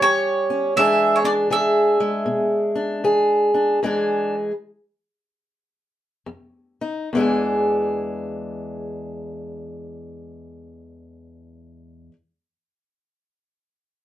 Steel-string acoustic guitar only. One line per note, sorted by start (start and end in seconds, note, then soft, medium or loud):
0.00 0.71 E3 medium
0.00 0.76 G3 medium
0.00 0.49 C#4 medium
0.00 0.73 G4 medium
0.50 0.73 C#4 medium
0.76 1.46 E2 medium
0.76 1.50 E3 medium
0.76 1.99 G#3 medium
0.76 1.24 D4 medium
0.76 1.51 G#4 medium
1.24 2.74 D4 medium
1.50 2.21 E3 medium
1.50 3.03 G#4 medium
2.00 3.79 G#3 medium
2.26 2.98 B2 medium
2.75 3.53 D4 medium
3.04 3.76 E3 medium
3.04 3.79 G#4 medium
3.54 3.79 D4 medium
3.83 4.50 E2 medium
3.83 4.51 E3 medium
3.83 4.51 G#3 medium
3.83 4.34 D4 medium
3.83 4.52 G#4 medium
6.26 7.06 F2 medium
6.81 7.09 D#4 medium
7.13 12.09 E2 medium
7.13 12.11 E3 medium
7.13 12.13 G#3 medium
7.18 12.15 D4 medium
7.18 12.16 G#4 medium